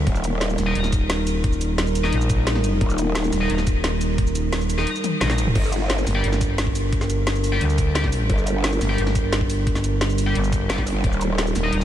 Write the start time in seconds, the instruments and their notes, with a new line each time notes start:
0.07 wobble bass D#1, analog synth pad G3 D#4 A#4, kick, closed hi-hat
0.15 shaker
0.24 closed hi-hat, shaker
0.41 snare, closed hi-hat
0.50 shaker
0.58 fm bass D#1, snare, closed hi-hat, shaker
0.67 distorted electric guitar D#4 A#4 D#5
0.75 fm bass D#1, closed hi-hat
0.84 snare, shaker
0.93 kick, closed hi-hat, shaker
1.10 snare, closed hi-hat
1.27 closed hi-hat, shaker
1.44 kick, closed hi-hat
1.53 shaker
1.61 closed hi-hat, shaker
1.78 snare, closed hi-hat
1.87 shaker
1.95 closed hi-hat, shaker
2.04 distorted electric guitar D#4 A#4 D#5, snare
2.13 fm bass A#1, closed hi-hat
2.21 shaker
2.30 kick, closed hi-hat, shaker
2.47 snare, closed hi-hat
2.55 snare
2.64 closed hi-hat, shaker
2.81 wobble bass D#1, kick, closed hi-hat
2.90 shaker
2.98 closed hi-hat, shaker
3.15 snare, closed hi-hat
3.24 shaker
3.33 fm bass D#1, snare, closed hi-hat, shaker
3.41 distorted electric guitar D#4 A#4 D#5
3.50 fm bass D#1, closed hi-hat
3.58 snare, shaker
3.67 kick, closed hi-hat, shaker
3.84 snare, closed hi-hat
4.01 closed hi-hat, shaker
4.18 kick, closed hi-hat
4.27 shaker
4.35 closed hi-hat, shaker
4.53 snare, closed hi-hat
4.61 shaker
4.70 closed hi-hat, shaker
4.78 distorted electric guitar D#4 A#4 D#5, snare
4.87 closed hi-hat
4.95 shaker
5.04 closed hi-hat, high tom, shaker
5.21 fm bass A#1, distorted electric guitar D#4 A#4 D#5, snare, closed hi-hat, mid tom
5.30 snare, shaker
5.38 closed hi-hat, shaker
5.47 mid tom
5.55 wobble bass G1, analog synth pad G3 D4 A#4, kick, closed hi-hat, crash
5.64 shaker
5.73 closed hi-hat, shaker
5.90 snare, closed hi-hat
5.98 shaker
6.07 fm bass G1, snare, open hi-hat, shaker
6.15 distorted electric guitar G4 D5 G5
6.24 fm bass G1, closed hi-hat
6.33 snare, shaker
6.41 kick, closed hi-hat, shaker
6.58 snare, closed hi-hat
6.67 kick
6.75 open hi-hat, shaker
6.93 kick, closed hi-hat
7.01 snare, shaker
7.10 closed hi-hat, shaker
7.27 snare, closed hi-hat
7.35 shaker
7.44 open hi-hat, shaker
7.52 distorted electric guitar G4 D5 G5
7.61 fm bass D2, closed hi-hat
7.70 shaker
7.78 kick, closed hi-hat, shaker
7.95 distorted electric guitar G4 D5 G5, snare, closed hi-hat
8.04 kick, snare
8.12 open hi-hat, shaker
8.30 wobble bass G1, kick, closed hi-hat
8.38 shaker
8.47 closed hi-hat, shaker
8.64 snare, closed hi-hat
8.73 shaker
8.81 fm bass G1, snare, open hi-hat, shaker
8.89 distorted electric guitar G4 D5 G5
8.98 fm bass G1, closed hi-hat
9.07 snare, shaker
9.15 kick, closed hi-hat, shaker
9.33 snare, closed hi-hat
9.41 kick
9.50 open hi-hat, shaker
9.67 kick, closed hi-hat
9.75 snare, shaker
9.84 closed hi-hat, shaker
10.01 snare, closed hi-hat
10.10 shaker
10.18 open hi-hat, shaker
10.27 distorted electric guitar G4 D5 G5
10.35 fm bass G1, closed hi-hat
10.44 shaker
10.53 kick, closed hi-hat, shaker
10.69 wobble bass G1, distorted electric guitar G4 D5 G5, snare, closed hi-hat
10.78 kick, snare
10.87 open hi-hat, shaker
11.04 wobble bass D#1, analog synth pad D#4 A#4, kick, closed hi-hat
11.13 shaker
11.21 closed hi-hat, shaker
11.38 snare, closed hi-hat
11.47 shaker
11.55 fm bass D#1, snare, open hi-hat, shaker
11.64 distorted electric guitar D#4 A#4 D#5
11.73 fm bass D#1, closed hi-hat